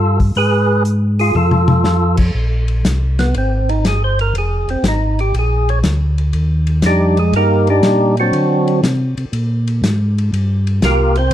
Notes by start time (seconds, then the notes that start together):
Already playing: G2 F4 A4
0.20 kick, open hi-hat
0.35 G#2 G#4 B4, open hi-hat
0.85 closed hi-hat
1.19 F4 G#4, open hi-hat
1.35 F2 F4 A4, high tom
1.51 high tom
1.68 high tom
1.84 snare
2.17 kick, crash
2.34 A#1
2.68 ride
2.85 C2, snare, hi-hat pedal, ride
3.19 B3, snare, ride
3.34 G#1 C4, ride
3.69 D#4, ride
3.84 G1 G#4, snare, hi-hat pedal, ride
4.04 C5
4.19 A#4, ride
4.34 F1, ride
4.38 G#4
4.68 F1 C4, ride
4.83 G#1, snare, hi-hat pedal, ride
4.88 D#4
5.19 G4, ride
5.34 A#1, ride
5.39 G#4
5.69 C#5, ride
5.84 D2, snare, hi-hat pedal, ride
6.18 ride
6.33 D#2, ride
6.67 ride
6.82 F2 D#4, snare, hi-hat pedal, ride
6.86 G3 D4 G4
7.17 G#3 G#4, ride
7.33 G2 A#3 D#4 A#4, ride
7.37 G4
7.67 G3 D4 D#4 G4, ride
7.83 A#2, snare, hi-hat pedal, ride
8.17 F#3 C4 D4 F#4, ride
8.33 D3, ride
8.68 ride
8.83 C3, snare, hi-hat pedal, ride
9.17 C3, ride
9.32 A#2, ride
9.67 ride
9.82 G#2, snare, hi-hat pedal, ride
10.18 ride
10.33 G2, ride
10.67 ride
10.82 C2 A#3 F4 G4 A#4, snare, hi-hat pedal, ride
11.16 C4 C5, ride
11.31 D2